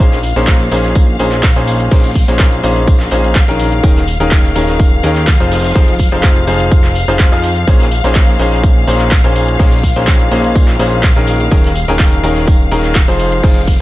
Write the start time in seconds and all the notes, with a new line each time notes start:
0.00 A#1 A#2 C#4 D#4 G#4 C5 F5, tambourine
0.12 snare, closed hi-hat
0.23 open hi-hat, tambourine
0.36 A#1 A#2 C#4 D#4 G#4 C5, closed hi-hat
0.47 kick, snare, clap, closed hi-hat, tambourine
0.60 closed hi-hat
0.71 A#1 A#2 C#4 D#4 G#4 C5, open hi-hat, tambourine
0.84 snare, closed hi-hat
0.95 kick, closed hi-hat, tambourine
1.19 A#1 A#2 C#4 D#4 G#4 C5, open hi-hat, tambourine
1.32 clap, closed hi-hat
1.43 kick, snare, clap, closed hi-hat, tambourine
1.56 A#1 A#2 C#4 D#4 G#4 C5, closed hi-hat
1.67 open hi-hat, tambourine
1.80 closed hi-hat
1.91 A#1 A#2 C#4 D#4 G#4 C5, kick, closed hi-hat, open hi-hat
2.04 closed hi-hat
2.15 kick, open hi-hat, tambourine
2.28 A#1 A#2 C#4 D#4 G#4 C5, closed hi-hat
2.39 kick, snare, clap, closed hi-hat, tambourine
2.52 closed hi-hat
2.63 A#1 A#2 C#4 D#4 G#4 C5, open hi-hat, tambourine
2.76 closed hi-hat
2.87 kick, closed hi-hat, tambourine
3.00 snare, clap
3.11 A#1 A#2 C#4 D#4 G#4 C5, open hi-hat, tambourine
3.24 closed hi-hat
3.35 kick, snare, clap, closed hi-hat, tambourine
3.48 A#1 D#3 C#4 D#4 G#4 A#4, closed hi-hat
3.59 open hi-hat, tambourine
3.72 closed hi-hat
3.83 D#1 D#3 C#4 D#4 G#4 A#4, kick, closed hi-hat, tambourine
3.96 snare, closed hi-hat
4.08 open hi-hat, tambourine
4.20 D#1 D#3 C#4 D#4 G#4 A#4, closed hi-hat
4.31 kick, snare, clap, closed hi-hat, tambourine
4.44 closed hi-hat
4.55 D#1 D#3 C#4 D#4 G#4 A#4, open hi-hat, tambourine
4.68 snare, closed hi-hat
4.79 kick, closed hi-hat, tambourine
5.03 D#2 D#3 C#4 D#4 G#4 A#4, open hi-hat, tambourine
5.16 clap, closed hi-hat
5.27 kick, snare, clap, closed hi-hat, tambourine
5.40 F1 F3 D#4 F4 G#4 C5, closed hi-hat
5.51 snare, open hi-hat, tambourine
5.58 snare, tambourine
5.64 snare, closed hi-hat, tambourine
5.69 snare, tambourine
5.75 F1 F3 D#4 F4 G#4 C5, kick, closed hi-hat, open hi-hat
5.88 closed hi-hat
5.99 kick, open hi-hat, tambourine
6.11 F1 F3 D#4 F4 G#4 C5, closed hi-hat
6.23 kick, snare, clap, closed hi-hat, tambourine
6.36 closed hi-hat
6.47 F1 F3 D#4 F4 G#4 C5, open hi-hat, tambourine
6.60 closed hi-hat
6.72 kick, closed hi-hat, tambourine
6.84 snare, clap
6.95 open hi-hat, tambourine
7.08 F1 F3 D#4 F4 G#4 C5, closed hi-hat
7.19 kick, snare, clap, closed hi-hat, tambourine
7.32 F2 F3 D#4 F4 G#4 F5, closed hi-hat
7.43 open hi-hat, tambourine
7.56 closed hi-hat
7.67 A#1 A#2 C#4 D#4 G#4 C5, kick, closed hi-hat, tambourine
7.80 snare, closed hi-hat
7.91 open hi-hat, tambourine
8.04 A#1 A#2 C#4 D#4 G#4 C5, closed hi-hat
8.15 kick, snare, clap, closed hi-hat, tambourine
8.28 closed hi-hat
8.39 A#1 A#2 C#4 D#4 G#4 C5, open hi-hat, tambourine
8.52 snare, closed hi-hat
8.63 kick, closed hi-hat, tambourine
8.87 A#1 A#2 C#4 D#4 G#4 C5, open hi-hat, tambourine
9.00 clap, closed hi-hat
9.11 kick, snare, clap, closed hi-hat, tambourine
9.24 A#1 A#2 C#4 D#4 G#4 C5, closed hi-hat
9.36 open hi-hat, tambourine
9.48 closed hi-hat
9.59 A#1 A#2 C#4 D#4 G#4 C5, kick, closed hi-hat, open hi-hat
9.72 closed hi-hat
9.84 kick, open hi-hat, tambourine
9.96 A#1 A#2 C#4 D#4 G#4 C5, closed hi-hat
10.07 kick, snare, clap, closed hi-hat, tambourine
10.20 closed hi-hat
10.31 A#1 A#2 C#4 D#4 G#4 C5, open hi-hat, tambourine
10.44 closed hi-hat
10.56 kick, closed hi-hat, tambourine
10.68 snare, clap
10.79 A#1 A#2 C#4 D#4 G#4 C5, open hi-hat, tambourine
10.92 closed hi-hat
11.03 kick, snare, clap, closed hi-hat, tambourine
11.16 A#1 D#3 C#4 D#4 G#4 A#4, closed hi-hat
11.27 open hi-hat, tambourine
11.40 closed hi-hat
11.51 D#1 D#3 C#4 D#4 G#4 A#4, kick, closed hi-hat, tambourine
11.64 snare, closed hi-hat
11.75 open hi-hat, tambourine
11.88 D#1 D#3 C#4 D#4 G#4 A#4, closed hi-hat
11.98 kick, snare, clap, closed hi-hat, tambourine
12.11 closed hi-hat
12.23 D#1 D#3 C#4 D#4 G#4 A#4, open hi-hat, tambourine
12.36 snare, closed hi-hat
12.47 kick, closed hi-hat, tambourine
12.71 D#1 D#3 C#4 D#4 G#4 A#4, open hi-hat, tambourine
12.84 clap, closed hi-hat
12.95 kick, snare, clap, closed hi-hat, tambourine
13.08 F1 F3 D#4 F4 G#4 C5, closed hi-hat
13.20 open hi-hat
13.32 closed hi-hat
13.43 F1 F3 D#4 F4 G#4 C5, kick, closed hi-hat, open hi-hat
13.56 closed hi-hat
13.67 kick, open hi-hat, tambourine